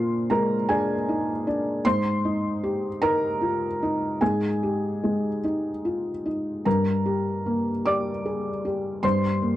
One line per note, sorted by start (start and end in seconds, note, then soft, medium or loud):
0.00 1.80 A#2 soft
0.00 0.70 D4 soft
0.00 0.54 F4 soft
0.00 0.27 C5 medium
0.00 0.30 C6 medium
0.30 0.92 G#3 soft
0.30 0.67 A#4 medium
0.30 0.69 A#5 medium
0.69 1.31 D4 soft
0.69 1.81 G#4 medium
0.69 1.84 G#5 medium
1.09 1.47 D#4 soft
1.47 1.85 D4 soft
1.85 4.17 G#2 medium
1.85 2.98 C5 medium
1.85 3.01 C6 medium
2.25 2.86 D#4 soft
2.64 3.25 G4 soft
3.02 3.64 D#4 soft
3.02 4.17 A#4 medium
3.02 4.21 A#5 medium
3.41 3.81 F4 soft
3.83 4.46 D#4 soft
4.21 6.62 G#2 medium
4.21 5.40 G#4 soft
4.21 5.43 G#5 medium
4.63 5.28 G4 soft
5.04 5.68 G#3 soft
5.44 6.09 D#4 soft
5.85 6.26 F4 soft
6.26 6.66 D#4 soft
6.65 8.99 G2 soft
6.65 7.82 A#4 soft
6.65 7.85 A#5 medium
7.06 7.69 G4 soft
7.46 8.09 A#3 soft
7.86 8.49 G4 soft
7.86 9.00 D5 medium
7.86 9.03 D6 medium
8.26 8.65 G#4 soft
8.65 9.27 G4 soft
9.03 9.56 G2 soft
9.03 9.56 C5 medium
9.03 9.56 C6 medium
9.42 9.56 A#3 soft